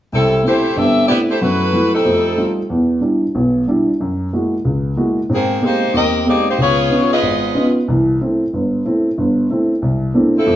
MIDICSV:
0, 0, Header, 1, 3, 480
1, 0, Start_track
1, 0, Tempo, 323974
1, 151, Time_signature, 4, 2, 24, 8
1, 15644, End_track
2, 0, Start_track
2, 0, Title_t, "Saxophone section"
2, 0, Program_c, 0, 65
2, 207, Note_on_c, 0, 69, 78
2, 209, Note_on_c, 0, 55, 64
2, 209, Note_on_c, 0, 60, 68
2, 216, Note_on_c, 0, 64, 66
2, 627, Note_off_c, 0, 69, 0
2, 628, Note_off_c, 0, 55, 0
2, 628, Note_off_c, 0, 60, 0
2, 632, Note_off_c, 0, 64, 0
2, 688, Note_on_c, 0, 67, 71
2, 690, Note_on_c, 0, 72, 73
2, 691, Note_on_c, 0, 64, 69
2, 694, Note_on_c, 0, 57, 63
2, 1108, Note_off_c, 0, 67, 0
2, 1109, Note_off_c, 0, 64, 0
2, 1109, Note_off_c, 0, 72, 0
2, 1111, Note_off_c, 0, 57, 0
2, 1137, Note_on_c, 0, 60, 74
2, 1143, Note_on_c, 0, 69, 70
2, 1145, Note_on_c, 0, 76, 91
2, 1147, Note_on_c, 0, 67, 66
2, 1595, Note_off_c, 0, 67, 0
2, 1603, Note_off_c, 0, 60, 0
2, 1603, Note_on_c, 0, 74, 76
2, 1606, Note_off_c, 0, 69, 0
2, 1607, Note_off_c, 0, 76, 0
2, 1609, Note_on_c, 0, 64, 75
2, 1612, Note_on_c, 0, 59, 71
2, 1613, Note_on_c, 0, 67, 60
2, 1736, Note_off_c, 0, 74, 0
2, 1740, Note_off_c, 0, 64, 0
2, 1743, Note_off_c, 0, 59, 0
2, 1743, Note_off_c, 0, 67, 0
2, 1926, Note_on_c, 0, 64, 68
2, 1931, Note_on_c, 0, 67, 58
2, 1932, Note_on_c, 0, 72, 69
2, 1935, Note_on_c, 0, 57, 61
2, 2063, Note_off_c, 0, 57, 0
2, 2067, Note_off_c, 0, 64, 0
2, 2079, Note_off_c, 0, 67, 0
2, 2080, Note_off_c, 0, 72, 0
2, 2080, Note_on_c, 0, 57, 69
2, 2085, Note_on_c, 0, 64, 72
2, 2091, Note_on_c, 0, 66, 78
2, 2091, Note_on_c, 0, 71, 88
2, 2855, Note_off_c, 0, 57, 0
2, 2858, Note_off_c, 0, 64, 0
2, 2861, Note_off_c, 0, 66, 0
2, 2861, Note_off_c, 0, 71, 0
2, 2867, Note_on_c, 0, 69, 79
2, 2875, Note_on_c, 0, 60, 65
2, 2876, Note_on_c, 0, 63, 64
2, 2881, Note_on_c, 0, 55, 68
2, 3758, Note_off_c, 0, 69, 0
2, 3762, Note_off_c, 0, 60, 0
2, 3763, Note_off_c, 0, 63, 0
2, 3765, Note_off_c, 0, 55, 0
2, 7897, Note_on_c, 0, 60, 67
2, 7898, Note_on_c, 0, 51, 67
2, 7900, Note_on_c, 0, 58, 65
2, 7904, Note_on_c, 0, 68, 70
2, 8310, Note_off_c, 0, 51, 0
2, 8310, Note_off_c, 0, 60, 0
2, 8311, Note_off_c, 0, 58, 0
2, 8314, Note_off_c, 0, 68, 0
2, 8350, Note_on_c, 0, 67, 63
2, 8361, Note_on_c, 0, 63, 66
2, 8362, Note_on_c, 0, 72, 85
2, 8364, Note_on_c, 0, 58, 67
2, 8802, Note_off_c, 0, 67, 0
2, 8813, Note_off_c, 0, 63, 0
2, 8813, Note_off_c, 0, 72, 0
2, 8814, Note_off_c, 0, 58, 0
2, 8820, Note_on_c, 0, 67, 71
2, 8824, Note_on_c, 0, 70, 69
2, 8828, Note_on_c, 0, 60, 71
2, 8828, Note_on_c, 0, 75, 92
2, 9250, Note_off_c, 0, 67, 0
2, 9252, Note_off_c, 0, 70, 0
2, 9254, Note_off_c, 0, 75, 0
2, 9255, Note_off_c, 0, 60, 0
2, 9304, Note_on_c, 0, 63, 72
2, 9305, Note_on_c, 0, 58, 68
2, 9306, Note_on_c, 0, 74, 82
2, 9312, Note_on_c, 0, 67, 70
2, 9585, Note_off_c, 0, 63, 0
2, 9586, Note_off_c, 0, 58, 0
2, 9586, Note_off_c, 0, 74, 0
2, 9589, Note_off_c, 0, 67, 0
2, 9617, Note_on_c, 0, 58, 61
2, 9618, Note_on_c, 0, 67, 61
2, 9619, Note_on_c, 0, 63, 62
2, 9622, Note_on_c, 0, 72, 73
2, 9760, Note_off_c, 0, 58, 0
2, 9760, Note_off_c, 0, 67, 0
2, 9761, Note_off_c, 0, 63, 0
2, 9763, Note_off_c, 0, 72, 0
2, 9789, Note_on_c, 0, 68, 72
2, 9803, Note_on_c, 0, 59, 79
2, 9803, Note_on_c, 0, 65, 82
2, 9804, Note_on_c, 0, 73, 89
2, 10495, Note_off_c, 0, 68, 0
2, 10502, Note_off_c, 0, 59, 0
2, 10502, Note_off_c, 0, 65, 0
2, 10503, Note_off_c, 0, 73, 0
2, 10553, Note_on_c, 0, 68, 74
2, 10560, Note_on_c, 0, 59, 78
2, 10561, Note_on_c, 0, 75, 87
2, 10567, Note_on_c, 0, 65, 72
2, 11441, Note_off_c, 0, 68, 0
2, 11444, Note_off_c, 0, 59, 0
2, 11444, Note_off_c, 0, 75, 0
2, 11447, Note_off_c, 0, 65, 0
2, 15371, Note_on_c, 0, 53, 57
2, 15372, Note_on_c, 0, 69, 71
2, 15373, Note_on_c, 0, 64, 55
2, 15379, Note_on_c, 0, 60, 57
2, 15644, Note_off_c, 0, 53, 0
2, 15644, Note_off_c, 0, 60, 0
2, 15644, Note_off_c, 0, 64, 0
2, 15644, Note_off_c, 0, 69, 0
2, 15644, End_track
3, 0, Start_track
3, 0, Title_t, "Upright piano"
3, 0, Program_c, 1, 0
3, 188, Note_on_c, 1, 36, 53
3, 584, Note_off_c, 1, 36, 0
3, 640, Note_on_c, 1, 57, 42
3, 648, Note_on_c, 1, 60, 38
3, 663, Note_on_c, 1, 64, 46
3, 954, Note_off_c, 1, 57, 0
3, 958, Note_off_c, 1, 60, 0
3, 966, Note_off_c, 1, 64, 0
3, 1133, Note_on_c, 1, 31, 53
3, 1536, Note_off_c, 1, 31, 0
3, 1615, Note_on_c, 1, 57, 42
3, 1617, Note_on_c, 1, 60, 40
3, 1627, Note_on_c, 1, 64, 50
3, 1921, Note_off_c, 1, 57, 0
3, 1922, Note_off_c, 1, 60, 0
3, 1927, Note_off_c, 1, 64, 0
3, 2094, Note_on_c, 1, 42, 53
3, 2100, Note_on_c, 1, 54, 56
3, 2495, Note_off_c, 1, 42, 0
3, 2499, Note_off_c, 1, 54, 0
3, 2566, Note_on_c, 1, 54, 42
3, 2577, Note_on_c, 1, 57, 37
3, 2583, Note_on_c, 1, 64, 48
3, 2876, Note_off_c, 1, 54, 0
3, 2882, Note_off_c, 1, 57, 0
3, 2885, Note_off_c, 1, 64, 0
3, 3038, Note_on_c, 1, 41, 55
3, 3041, Note_on_c, 1, 57, 58
3, 3446, Note_off_c, 1, 41, 0
3, 3448, Note_off_c, 1, 57, 0
3, 3515, Note_on_c, 1, 55, 49
3, 3517, Note_on_c, 1, 57, 45
3, 3520, Note_on_c, 1, 63, 42
3, 3525, Note_on_c, 1, 65, 53
3, 3830, Note_off_c, 1, 55, 0
3, 3831, Note_off_c, 1, 57, 0
3, 3833, Note_off_c, 1, 63, 0
3, 3835, Note_off_c, 1, 65, 0
3, 3996, Note_on_c, 1, 40, 58
3, 4405, Note_off_c, 1, 40, 0
3, 4457, Note_on_c, 1, 55, 44
3, 4465, Note_on_c, 1, 62, 39
3, 4471, Note_on_c, 1, 64, 44
3, 4781, Note_off_c, 1, 55, 0
3, 4785, Note_off_c, 1, 62, 0
3, 4788, Note_off_c, 1, 64, 0
3, 4962, Note_on_c, 1, 35, 55
3, 4963, Note_on_c, 1, 47, 53
3, 5368, Note_off_c, 1, 35, 0
3, 5368, Note_off_c, 1, 47, 0
3, 5445, Note_on_c, 1, 55, 46
3, 5455, Note_on_c, 1, 62, 44
3, 5467, Note_on_c, 1, 64, 56
3, 5754, Note_off_c, 1, 55, 0
3, 5760, Note_off_c, 1, 62, 0
3, 5765, Note_off_c, 1, 64, 0
3, 5934, Note_on_c, 1, 42, 54
3, 6334, Note_off_c, 1, 42, 0
3, 6416, Note_on_c, 1, 56, 43
3, 6420, Note_on_c, 1, 58, 39
3, 6420, Note_on_c, 1, 64, 39
3, 6425, Note_on_c, 1, 66, 46
3, 6720, Note_off_c, 1, 56, 0
3, 6721, Note_off_c, 1, 58, 0
3, 6721, Note_off_c, 1, 64, 0
3, 6724, Note_off_c, 1, 66, 0
3, 6886, Note_on_c, 1, 37, 52
3, 7290, Note_off_c, 1, 37, 0
3, 7364, Note_on_c, 1, 58, 42
3, 7365, Note_on_c, 1, 56, 49
3, 7365, Note_on_c, 1, 64, 40
3, 7367, Note_on_c, 1, 66, 53
3, 7673, Note_off_c, 1, 58, 0
3, 7674, Note_off_c, 1, 56, 0
3, 7674, Note_off_c, 1, 64, 0
3, 7675, Note_off_c, 1, 66, 0
3, 7845, Note_on_c, 1, 44, 56
3, 7848, Note_on_c, 1, 60, 51
3, 8249, Note_off_c, 1, 44, 0
3, 8250, Note_off_c, 1, 60, 0
3, 8317, Note_on_c, 1, 56, 46
3, 8329, Note_on_c, 1, 58, 38
3, 8331, Note_on_c, 1, 60, 36
3, 8336, Note_on_c, 1, 67, 48
3, 8630, Note_off_c, 1, 56, 0
3, 8636, Note_off_c, 1, 58, 0
3, 8636, Note_off_c, 1, 60, 0
3, 8639, Note_off_c, 1, 67, 0
3, 8797, Note_on_c, 1, 39, 55
3, 9204, Note_off_c, 1, 39, 0
3, 9270, Note_on_c, 1, 58, 43
3, 9274, Note_on_c, 1, 60, 41
3, 9276, Note_on_c, 1, 56, 46
3, 9280, Note_on_c, 1, 67, 51
3, 9586, Note_off_c, 1, 58, 0
3, 9588, Note_off_c, 1, 60, 0
3, 9589, Note_off_c, 1, 56, 0
3, 9591, Note_off_c, 1, 67, 0
3, 9752, Note_on_c, 1, 37, 49
3, 10162, Note_off_c, 1, 37, 0
3, 10226, Note_on_c, 1, 61, 34
3, 10228, Note_on_c, 1, 59, 44
3, 10230, Note_on_c, 1, 63, 40
3, 10236, Note_on_c, 1, 65, 47
3, 10544, Note_off_c, 1, 61, 0
3, 10545, Note_off_c, 1, 59, 0
3, 10546, Note_off_c, 1, 63, 0
3, 10549, Note_off_c, 1, 65, 0
3, 10705, Note_on_c, 1, 32, 55
3, 11118, Note_off_c, 1, 32, 0
3, 11183, Note_on_c, 1, 61, 46
3, 11185, Note_on_c, 1, 59, 49
3, 11188, Note_on_c, 1, 63, 42
3, 11198, Note_on_c, 1, 65, 53
3, 11503, Note_off_c, 1, 61, 0
3, 11504, Note_off_c, 1, 59, 0
3, 11505, Note_off_c, 1, 63, 0
3, 11510, Note_off_c, 1, 65, 0
3, 11678, Note_on_c, 1, 36, 58
3, 11689, Note_on_c, 1, 52, 53
3, 12085, Note_off_c, 1, 36, 0
3, 12091, Note_off_c, 1, 52, 0
3, 12166, Note_on_c, 1, 57, 42
3, 12171, Note_on_c, 1, 60, 41
3, 12174, Note_on_c, 1, 64, 47
3, 12475, Note_off_c, 1, 57, 0
3, 12477, Note_off_c, 1, 60, 0
3, 12479, Note_off_c, 1, 64, 0
3, 12645, Note_on_c, 1, 31, 52
3, 13050, Note_off_c, 1, 31, 0
3, 13120, Note_on_c, 1, 57, 45
3, 13125, Note_on_c, 1, 64, 55
3, 13126, Note_on_c, 1, 60, 44
3, 13432, Note_off_c, 1, 57, 0
3, 13435, Note_off_c, 1, 60, 0
3, 13435, Note_off_c, 1, 64, 0
3, 13600, Note_on_c, 1, 31, 61
3, 14008, Note_off_c, 1, 31, 0
3, 14082, Note_on_c, 1, 57, 46
3, 14086, Note_on_c, 1, 60, 42
3, 14094, Note_on_c, 1, 64, 50
3, 14394, Note_off_c, 1, 57, 0
3, 14396, Note_off_c, 1, 60, 0
3, 14400, Note_off_c, 1, 64, 0
3, 14552, Note_on_c, 1, 36, 57
3, 14964, Note_off_c, 1, 36, 0
3, 15023, Note_on_c, 1, 57, 47
3, 15029, Note_on_c, 1, 58, 43
3, 15032, Note_on_c, 1, 62, 40
3, 15033, Note_on_c, 1, 60, 44
3, 15038, Note_on_c, 1, 64, 54
3, 15345, Note_off_c, 1, 57, 0
3, 15348, Note_off_c, 1, 58, 0
3, 15350, Note_off_c, 1, 60, 0
3, 15350, Note_off_c, 1, 62, 0
3, 15353, Note_off_c, 1, 64, 0
3, 15508, Note_on_c, 1, 41, 63
3, 15644, Note_off_c, 1, 41, 0
3, 15644, End_track
0, 0, End_of_file